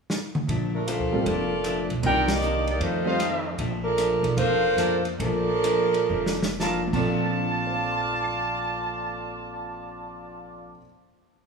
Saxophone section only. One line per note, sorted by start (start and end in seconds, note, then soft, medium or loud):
0.75 0.87 F3 medium
0.75 0.87 A3 medium
0.75 0.87 D4 medium
0.75 0.87 A#4 medium
0.88 1.26 A#3 medium
0.88 1.26 F4 medium
0.88 1.26 A4 medium
0.88 1.26 C5 medium
1.27 1.91 A#3 medium
1.27 1.91 F4 medium
1.27 1.91 A4 medium
1.27 1.91 D5 medium
2.06 2.28 D#4 medium
2.06 2.29 A#4 loud
2.06 2.28 D5 medium
2.06 2.28 G5 loud
2.32 2.68 A#3 medium
2.32 2.68 G4 medium
2.32 2.68 D5 medium
2.32 2.69 D#5 medium
2.69 2.81 A#3 medium
2.69 2.81 D#4 medium
2.69 2.81 G4 medium
2.69 2.81 D5 medium
2.82 3.20 A3 medium
2.82 3.20 D#4 medium
2.82 3.20 F4 medium
2.82 3.20 C5 medium
3.84 4.33 F3 medium
3.84 4.33 D4 medium
3.84 4.33 A4 medium
3.84 4.33 A#4 medium
4.37 5.01 A#3 medium
4.37 5.01 F4 loud
4.37 5.01 A4 medium
4.37 5.01 C5 loud
5.20 6.55 F3 medium
5.20 6.55 D4 medium
5.20 6.55 A4 medium
5.20 6.55 A#4 loud